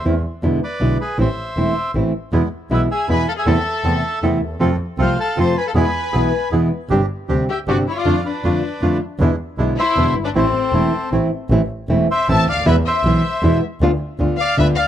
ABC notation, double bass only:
X:1
M:3/4
L:1/8
Q:1/4=157
K:Am
V:1 name="Double bass" clef=bass
E,, z E,, z B,,, z | A,,, z E,,, z A,,, z | E,, z B,,, z E,, z | E,, z E,, z E,, ^D,, |
F,, z C,, z F,, z | E,, z B,,, z E,, z | G,,, z D,, z G,,, z | F,, z F,, z F,, z |
E,, z B,,, z E,, G,,, | A,,, z E,,, z A,,, z | A,,, z E,,, z A,,, D,, | E,, z B,,, z E,, z |
D,, z D,, z D,, D,, |]